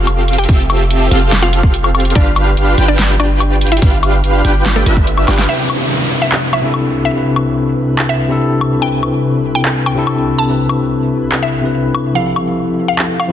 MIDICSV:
0, 0, Header, 1, 8, 480
1, 0, Start_track
1, 0, Key_signature, 0, "major"
1, 0, Tempo, 416667
1, 561, Time_signature, 4, 2, 24, 8
1, 15345, End_track
2, 0, Start_track
2, 0, Title_t, "Synth pluck"
2, 0, Program_c, 0, 84
2, 442, Note_on_c, 0, 67, 83
2, 442, Note_on_c, 0, 79, 102
2, 625, Note_off_c, 0, 67, 0
2, 625, Note_off_c, 0, 79, 0
2, 1641, Note_on_c, 0, 65, 84
2, 1641, Note_on_c, 0, 77, 101
2, 1825, Note_off_c, 0, 65, 0
2, 1825, Note_off_c, 0, 77, 0
2, 2481, Note_on_c, 0, 62, 78
2, 2482, Note_on_c, 0, 74, 98
2, 2726, Note_off_c, 0, 62, 0
2, 2726, Note_off_c, 0, 74, 0
2, 3321, Note_on_c, 0, 62, 77
2, 3322, Note_on_c, 0, 74, 100
2, 3505, Note_off_c, 0, 62, 0
2, 3505, Note_off_c, 0, 74, 0
2, 3682, Note_on_c, 0, 74, 94
2, 3683, Note_on_c, 0, 62, 82
2, 3804, Note_off_c, 0, 62, 0
2, 3804, Note_off_c, 0, 74, 0
2, 4282, Note_on_c, 0, 64, 79
2, 4283, Note_on_c, 0, 76, 100
2, 4465, Note_off_c, 0, 64, 0
2, 4465, Note_off_c, 0, 76, 0
2, 5482, Note_on_c, 0, 57, 84
2, 5482, Note_on_c, 0, 69, 103
2, 5665, Note_off_c, 0, 57, 0
2, 5665, Note_off_c, 0, 69, 0
2, 6322, Note_on_c, 0, 76, 100
2, 6566, Note_off_c, 0, 76, 0
2, 7162, Note_on_c, 0, 76, 91
2, 7345, Note_off_c, 0, 76, 0
2, 7524, Note_on_c, 0, 76, 87
2, 7645, Note_off_c, 0, 76, 0
2, 8122, Note_on_c, 0, 76, 93
2, 8305, Note_off_c, 0, 76, 0
2, 9322, Note_on_c, 0, 76, 98
2, 9505, Note_off_c, 0, 76, 0
2, 10160, Note_on_c, 0, 79, 98
2, 10405, Note_off_c, 0, 79, 0
2, 11002, Note_on_c, 0, 79, 96
2, 11185, Note_off_c, 0, 79, 0
2, 11362, Note_on_c, 0, 79, 89
2, 11484, Note_off_c, 0, 79, 0
2, 11963, Note_on_c, 0, 81, 95
2, 12146, Note_off_c, 0, 81, 0
2, 13162, Note_on_c, 0, 76, 93
2, 13345, Note_off_c, 0, 76, 0
2, 14000, Note_on_c, 0, 77, 94
2, 14245, Note_off_c, 0, 77, 0
2, 14842, Note_on_c, 0, 77, 88
2, 15025, Note_off_c, 0, 77, 0
2, 15202, Note_on_c, 0, 77, 85
2, 15324, Note_off_c, 0, 77, 0
2, 15345, End_track
3, 0, Start_track
3, 0, Title_t, "Supersaw synth"
3, 0, Program_c, 1, 81
3, 0, Note_on_c, 1, 60, 85
3, 0, Note_on_c, 1, 65, 74
3, 0, Note_on_c, 1, 67, 79
3, 0, Note_on_c, 1, 69, 74
3, 0, Note_on_c, 1, 77, 94
3, 533, Note_off_c, 1, 60, 0
3, 533, Note_off_c, 1, 65, 0
3, 533, Note_off_c, 1, 67, 0
3, 533, Note_off_c, 1, 69, 0
3, 533, Note_off_c, 1, 77, 0
3, 562, Note_on_c, 1, 60, 87
3, 562, Note_on_c, 1, 65, 77
3, 562, Note_on_c, 1, 69, 79
3, 562, Note_on_c, 1, 76, 95
3, 563, Note_on_c, 1, 67, 77
3, 1253, Note_off_c, 1, 60, 0
3, 1253, Note_off_c, 1, 65, 0
3, 1253, Note_off_c, 1, 67, 0
3, 1253, Note_off_c, 1, 69, 0
3, 1253, Note_off_c, 1, 76, 0
3, 1282, Note_on_c, 1, 60, 86
3, 1282, Note_on_c, 1, 65, 74
3, 1282, Note_on_c, 1, 67, 75
3, 1282, Note_on_c, 1, 69, 75
3, 1282, Note_on_c, 1, 77, 94
3, 2453, Note_off_c, 1, 60, 0
3, 2453, Note_off_c, 1, 65, 0
3, 2453, Note_off_c, 1, 67, 0
3, 2453, Note_off_c, 1, 69, 0
3, 2453, Note_off_c, 1, 77, 0
3, 2482, Note_on_c, 1, 62, 87
3, 2482, Note_on_c, 1, 65, 76
3, 2482, Note_on_c, 1, 67, 82
3, 2482, Note_on_c, 1, 71, 76
3, 2482, Note_on_c, 1, 77, 101
3, 3173, Note_off_c, 1, 62, 0
3, 3173, Note_off_c, 1, 65, 0
3, 3173, Note_off_c, 1, 67, 0
3, 3173, Note_off_c, 1, 71, 0
3, 3173, Note_off_c, 1, 77, 0
3, 3202, Note_on_c, 1, 62, 82
3, 3202, Note_on_c, 1, 65, 76
3, 3202, Note_on_c, 1, 67, 79
3, 3202, Note_on_c, 1, 71, 78
3, 3202, Note_on_c, 1, 79, 96
3, 4373, Note_off_c, 1, 62, 0
3, 4373, Note_off_c, 1, 65, 0
3, 4373, Note_off_c, 1, 67, 0
3, 4373, Note_off_c, 1, 71, 0
3, 4373, Note_off_c, 1, 79, 0
3, 4402, Note_on_c, 1, 62, 87
3, 4402, Note_on_c, 1, 65, 81
3, 4402, Note_on_c, 1, 67, 81
3, 4402, Note_on_c, 1, 71, 80
3, 4402, Note_on_c, 1, 77, 99
3, 5093, Note_off_c, 1, 62, 0
3, 5093, Note_off_c, 1, 65, 0
3, 5093, Note_off_c, 1, 67, 0
3, 5093, Note_off_c, 1, 71, 0
3, 5093, Note_off_c, 1, 77, 0
3, 5122, Note_on_c, 1, 62, 81
3, 5122, Note_on_c, 1, 65, 72
3, 5122, Note_on_c, 1, 67, 79
3, 5122, Note_on_c, 1, 71, 74
3, 5122, Note_on_c, 1, 79, 92
3, 5578, Note_off_c, 1, 62, 0
3, 5578, Note_off_c, 1, 65, 0
3, 5578, Note_off_c, 1, 67, 0
3, 5578, Note_off_c, 1, 71, 0
3, 5578, Note_off_c, 1, 79, 0
3, 5601, Note_on_c, 1, 65, 73
3, 5602, Note_on_c, 1, 62, 79
3, 5602, Note_on_c, 1, 67, 74
3, 5602, Note_on_c, 1, 71, 74
3, 5602, Note_on_c, 1, 76, 91
3, 6053, Note_off_c, 1, 62, 0
3, 6053, Note_off_c, 1, 65, 0
3, 6053, Note_off_c, 1, 67, 0
3, 6053, Note_off_c, 1, 71, 0
3, 6053, Note_off_c, 1, 76, 0
3, 6082, Note_on_c, 1, 62, 87
3, 6082, Note_on_c, 1, 65, 81
3, 6082, Note_on_c, 1, 67, 79
3, 6082, Note_on_c, 1, 71, 82
3, 6082, Note_on_c, 1, 79, 96
3, 6293, Note_off_c, 1, 62, 0
3, 6293, Note_off_c, 1, 65, 0
3, 6293, Note_off_c, 1, 67, 0
3, 6293, Note_off_c, 1, 71, 0
3, 6293, Note_off_c, 1, 79, 0
3, 15345, End_track
4, 0, Start_track
4, 0, Title_t, "Ambient pad"
4, 0, Program_c, 2, 92
4, 6322, Note_on_c, 2, 48, 70
4, 6322, Note_on_c, 2, 71, 81
4, 6323, Note_on_c, 2, 36, 77
4, 6323, Note_on_c, 2, 64, 71
4, 13956, Note_off_c, 2, 36, 0
4, 13956, Note_off_c, 2, 48, 0
4, 13956, Note_off_c, 2, 64, 0
4, 13956, Note_off_c, 2, 71, 0
4, 14002, Note_on_c, 2, 41, 76
4, 14002, Note_on_c, 2, 64, 70
4, 14002, Note_on_c, 2, 67, 71
4, 14002, Note_on_c, 2, 69, 85
4, 15345, Note_off_c, 2, 41, 0
4, 15345, Note_off_c, 2, 64, 0
4, 15345, Note_off_c, 2, 67, 0
4, 15345, Note_off_c, 2, 69, 0
4, 15345, End_track
5, 0, Start_track
5, 0, Title_t, "Tine electric piano"
5, 0, Program_c, 3, 4
5, 6299, Note_on_c, 3, 48, 69
5, 6310, Note_on_c, 3, 60, 62
5, 6322, Note_on_c, 3, 62, 60
5, 6334, Note_on_c, 3, 64, 58
5, 6345, Note_on_c, 3, 71, 75
5, 6561, Control_c, 3, 64, 127
5, 7602, Note_off_c, 3, 48, 0
5, 7607, Note_off_c, 3, 60, 0
5, 7613, Note_off_c, 3, 62, 0
5, 7618, Note_on_c, 3, 48, 89
5, 7619, Note_off_c, 3, 64, 0
5, 7625, Note_off_c, 3, 71, 0
5, 7630, Note_on_c, 3, 60, 89
5, 7641, Note_on_c, 3, 62, 86
5, 7652, Note_on_c, 3, 64, 87
5, 7663, Note_on_c, 3, 69, 101
5, 8201, Note_off_c, 3, 48, 0
5, 8207, Note_off_c, 3, 60, 0
5, 8212, Note_off_c, 3, 62, 0
5, 8217, Note_on_c, 3, 48, 69
5, 8218, Note_off_c, 3, 64, 0
5, 8224, Note_off_c, 3, 69, 0
5, 8229, Note_on_c, 3, 60, 58
5, 8240, Note_on_c, 3, 62, 60
5, 8251, Note_on_c, 3, 64, 61
5, 8263, Note_on_c, 3, 71, 72
5, 9521, Note_off_c, 3, 48, 0
5, 9526, Note_off_c, 3, 60, 0
5, 9532, Note_off_c, 3, 62, 0
5, 9537, Note_on_c, 3, 48, 92
5, 9538, Note_off_c, 3, 64, 0
5, 9544, Note_off_c, 3, 71, 0
5, 9549, Note_on_c, 3, 60, 83
5, 9561, Note_on_c, 3, 62, 86
5, 9572, Note_on_c, 3, 64, 86
5, 9584, Note_on_c, 3, 69, 105
5, 10121, Note_off_c, 3, 48, 0
5, 10126, Note_off_c, 3, 60, 0
5, 10132, Note_off_c, 3, 62, 0
5, 10138, Note_off_c, 3, 64, 0
5, 10138, Note_on_c, 3, 48, 67
5, 10144, Note_off_c, 3, 69, 0
5, 10149, Note_on_c, 3, 60, 62
5, 10160, Note_on_c, 3, 62, 64
5, 10172, Note_on_c, 3, 64, 63
5, 10184, Note_on_c, 3, 71, 73
5, 11441, Note_off_c, 3, 48, 0
5, 11447, Note_off_c, 3, 60, 0
5, 11452, Note_off_c, 3, 62, 0
5, 11458, Note_off_c, 3, 64, 0
5, 11458, Note_on_c, 3, 48, 94
5, 11464, Note_off_c, 3, 71, 0
5, 11469, Note_on_c, 3, 60, 89
5, 11481, Note_on_c, 3, 62, 87
5, 11492, Note_on_c, 3, 64, 91
5, 11504, Note_on_c, 3, 69, 108
5, 12041, Note_off_c, 3, 48, 0
5, 12047, Note_off_c, 3, 60, 0
5, 12052, Note_off_c, 3, 62, 0
5, 12058, Note_off_c, 3, 64, 0
5, 12058, Note_on_c, 3, 48, 67
5, 12064, Note_off_c, 3, 69, 0
5, 12070, Note_on_c, 3, 60, 62
5, 12081, Note_on_c, 3, 62, 61
5, 12093, Note_on_c, 3, 64, 63
5, 12105, Note_on_c, 3, 71, 72
5, 13361, Note_off_c, 3, 48, 0
5, 13367, Note_off_c, 3, 60, 0
5, 13373, Note_off_c, 3, 62, 0
5, 13379, Note_off_c, 3, 64, 0
5, 13379, Note_on_c, 3, 48, 75
5, 13384, Note_off_c, 3, 71, 0
5, 13390, Note_on_c, 3, 60, 70
5, 13401, Note_on_c, 3, 62, 69
5, 13413, Note_on_c, 3, 64, 69
5, 13425, Note_on_c, 3, 71, 85
5, 13961, Note_off_c, 3, 48, 0
5, 13967, Note_off_c, 3, 60, 0
5, 13973, Note_off_c, 3, 62, 0
5, 13978, Note_off_c, 3, 64, 0
5, 13980, Note_on_c, 3, 53, 71
5, 13984, Note_off_c, 3, 71, 0
5, 13991, Note_on_c, 3, 60, 60
5, 14002, Note_on_c, 3, 64, 62
5, 14014, Note_on_c, 3, 67, 62
5, 14017, Control_c, 3, 64, 0
5, 14025, Note_on_c, 3, 69, 75
5, 14231, Control_c, 3, 64, 127
5, 15282, Note_off_c, 3, 53, 0
5, 15288, Note_off_c, 3, 60, 0
5, 15293, Note_off_c, 3, 64, 0
5, 15298, Note_on_c, 3, 53, 97
5, 15299, Note_off_c, 3, 67, 0
5, 15305, Note_off_c, 3, 69, 0
5, 15310, Note_on_c, 3, 60, 85
5, 15345, Note_off_c, 3, 53, 0
5, 15345, Note_off_c, 3, 60, 0
5, 15345, End_track
6, 0, Start_track
6, 0, Title_t, "808-style bass"
6, 0, Program_c, 4, 38
6, 0, Note_on_c, 4, 29, 96
6, 538, Note_off_c, 4, 29, 0
6, 562, Note_on_c, 4, 29, 98
6, 1258, Note_off_c, 4, 29, 0
6, 1281, Note_on_c, 4, 29, 98
6, 2458, Note_off_c, 4, 29, 0
6, 2482, Note_on_c, 4, 31, 105
6, 3178, Note_off_c, 4, 31, 0
6, 3201, Note_on_c, 4, 31, 98
6, 4377, Note_off_c, 4, 31, 0
6, 4402, Note_on_c, 4, 31, 104
6, 5098, Note_off_c, 4, 31, 0
6, 5121, Note_on_c, 4, 31, 96
6, 5577, Note_off_c, 4, 31, 0
6, 5601, Note_on_c, 4, 31, 107
6, 6057, Note_off_c, 4, 31, 0
6, 6081, Note_on_c, 4, 31, 101
6, 6298, Note_off_c, 4, 31, 0
6, 15345, End_track
7, 0, Start_track
7, 0, Title_t, "Downlifter"
7, 0, Program_c, 5, 103
7, 6322, Note_on_c, 5, 60, 68
7, 10162, Note_off_c, 5, 60, 0
7, 15345, End_track
8, 0, Start_track
8, 0, Title_t, "Drums"
8, 83, Note_on_c, 9, 42, 80
8, 83, Note_on_c, 9, 76, 82
8, 198, Note_off_c, 9, 42, 0
8, 198, Note_off_c, 9, 76, 0
8, 323, Note_on_c, 9, 42, 45
8, 383, Note_off_c, 9, 42, 0
8, 383, Note_on_c, 9, 42, 61
8, 444, Note_off_c, 9, 42, 0
8, 444, Note_on_c, 9, 42, 50
8, 504, Note_off_c, 9, 42, 0
8, 504, Note_on_c, 9, 42, 63
8, 562, Note_on_c, 9, 36, 118
8, 563, Note_off_c, 9, 42, 0
8, 563, Note_on_c, 9, 42, 81
8, 677, Note_off_c, 9, 36, 0
8, 679, Note_off_c, 9, 42, 0
8, 804, Note_on_c, 9, 42, 62
8, 804, Note_on_c, 9, 76, 78
8, 919, Note_off_c, 9, 42, 0
8, 919, Note_off_c, 9, 76, 0
8, 1043, Note_on_c, 9, 42, 82
8, 1159, Note_off_c, 9, 42, 0
8, 1283, Note_on_c, 9, 42, 67
8, 1398, Note_off_c, 9, 42, 0
8, 1522, Note_on_c, 9, 38, 108
8, 1522, Note_on_c, 9, 42, 74
8, 1638, Note_off_c, 9, 38, 0
8, 1638, Note_off_c, 9, 42, 0
8, 1762, Note_on_c, 9, 42, 65
8, 1877, Note_off_c, 9, 42, 0
8, 1882, Note_on_c, 9, 36, 59
8, 1998, Note_off_c, 9, 36, 0
8, 2003, Note_on_c, 9, 42, 81
8, 2118, Note_off_c, 9, 42, 0
8, 2123, Note_on_c, 9, 76, 64
8, 2238, Note_off_c, 9, 76, 0
8, 2242, Note_on_c, 9, 42, 46
8, 2242, Note_on_c, 9, 76, 80
8, 2302, Note_off_c, 9, 42, 0
8, 2302, Note_on_c, 9, 42, 61
8, 2357, Note_off_c, 9, 76, 0
8, 2362, Note_off_c, 9, 42, 0
8, 2362, Note_on_c, 9, 42, 48
8, 2422, Note_off_c, 9, 42, 0
8, 2422, Note_on_c, 9, 42, 66
8, 2481, Note_off_c, 9, 42, 0
8, 2481, Note_on_c, 9, 42, 80
8, 2482, Note_on_c, 9, 36, 112
8, 2597, Note_off_c, 9, 36, 0
8, 2597, Note_off_c, 9, 42, 0
8, 2721, Note_on_c, 9, 42, 69
8, 2721, Note_on_c, 9, 76, 79
8, 2836, Note_off_c, 9, 42, 0
8, 2836, Note_off_c, 9, 76, 0
8, 2962, Note_on_c, 9, 42, 83
8, 3077, Note_off_c, 9, 42, 0
8, 3201, Note_on_c, 9, 42, 70
8, 3316, Note_off_c, 9, 42, 0
8, 3442, Note_on_c, 9, 38, 110
8, 3442, Note_on_c, 9, 42, 79
8, 3557, Note_off_c, 9, 38, 0
8, 3557, Note_off_c, 9, 42, 0
8, 3682, Note_on_c, 9, 42, 70
8, 3682, Note_on_c, 9, 76, 83
8, 3797, Note_off_c, 9, 42, 0
8, 3797, Note_off_c, 9, 76, 0
8, 3921, Note_on_c, 9, 42, 87
8, 3921, Note_on_c, 9, 76, 82
8, 4037, Note_off_c, 9, 42, 0
8, 4037, Note_off_c, 9, 76, 0
8, 4162, Note_on_c, 9, 42, 51
8, 4222, Note_off_c, 9, 42, 0
8, 4222, Note_on_c, 9, 42, 64
8, 4282, Note_off_c, 9, 42, 0
8, 4282, Note_on_c, 9, 42, 52
8, 4342, Note_off_c, 9, 42, 0
8, 4342, Note_on_c, 9, 42, 68
8, 4401, Note_off_c, 9, 42, 0
8, 4401, Note_on_c, 9, 42, 84
8, 4402, Note_on_c, 9, 36, 114
8, 4517, Note_off_c, 9, 36, 0
8, 4517, Note_off_c, 9, 42, 0
8, 4641, Note_on_c, 9, 42, 66
8, 4641, Note_on_c, 9, 76, 74
8, 4756, Note_off_c, 9, 42, 0
8, 4756, Note_off_c, 9, 76, 0
8, 4882, Note_on_c, 9, 42, 82
8, 4997, Note_off_c, 9, 42, 0
8, 5122, Note_on_c, 9, 42, 72
8, 5237, Note_off_c, 9, 42, 0
8, 5362, Note_on_c, 9, 38, 114
8, 5362, Note_on_c, 9, 42, 81
8, 5478, Note_off_c, 9, 38, 0
8, 5478, Note_off_c, 9, 42, 0
8, 5602, Note_on_c, 9, 42, 71
8, 5717, Note_off_c, 9, 42, 0
8, 5722, Note_on_c, 9, 36, 57
8, 5838, Note_off_c, 9, 36, 0
8, 5842, Note_on_c, 9, 42, 85
8, 5957, Note_off_c, 9, 42, 0
8, 5962, Note_on_c, 9, 76, 62
8, 6077, Note_off_c, 9, 76, 0
8, 6081, Note_on_c, 9, 38, 62
8, 6081, Note_on_c, 9, 42, 50
8, 6081, Note_on_c, 9, 76, 80
8, 6142, Note_off_c, 9, 42, 0
8, 6142, Note_on_c, 9, 42, 64
8, 6196, Note_off_c, 9, 38, 0
8, 6196, Note_off_c, 9, 76, 0
8, 6203, Note_off_c, 9, 42, 0
8, 6203, Note_on_c, 9, 38, 79
8, 6203, Note_on_c, 9, 42, 55
8, 6262, Note_off_c, 9, 42, 0
8, 6262, Note_on_c, 9, 42, 73
8, 6318, Note_off_c, 9, 38, 0
8, 6377, Note_off_c, 9, 42, 0
8, 6563, Note_on_c, 9, 76, 69
8, 6678, Note_off_c, 9, 76, 0
8, 7282, Note_on_c, 9, 39, 89
8, 7397, Note_off_c, 9, 39, 0
8, 7522, Note_on_c, 9, 76, 70
8, 7637, Note_off_c, 9, 76, 0
8, 7762, Note_on_c, 9, 76, 70
8, 7878, Note_off_c, 9, 76, 0
8, 8482, Note_on_c, 9, 76, 68
8, 8597, Note_off_c, 9, 76, 0
8, 9201, Note_on_c, 9, 39, 84
8, 9316, Note_off_c, 9, 39, 0
8, 9921, Note_on_c, 9, 76, 70
8, 10036, Note_off_c, 9, 76, 0
8, 10401, Note_on_c, 9, 76, 73
8, 10516, Note_off_c, 9, 76, 0
8, 11121, Note_on_c, 9, 39, 87
8, 11236, Note_off_c, 9, 39, 0
8, 11361, Note_on_c, 9, 76, 75
8, 11476, Note_off_c, 9, 76, 0
8, 11601, Note_on_c, 9, 76, 76
8, 11716, Note_off_c, 9, 76, 0
8, 12320, Note_on_c, 9, 76, 72
8, 12435, Note_off_c, 9, 76, 0
8, 13041, Note_on_c, 9, 39, 83
8, 13156, Note_off_c, 9, 39, 0
8, 13761, Note_on_c, 9, 76, 76
8, 13877, Note_off_c, 9, 76, 0
8, 14242, Note_on_c, 9, 76, 76
8, 14357, Note_off_c, 9, 76, 0
8, 14961, Note_on_c, 9, 39, 82
8, 15077, Note_off_c, 9, 39, 0
8, 15202, Note_on_c, 9, 76, 79
8, 15317, Note_off_c, 9, 76, 0
8, 15345, End_track
0, 0, End_of_file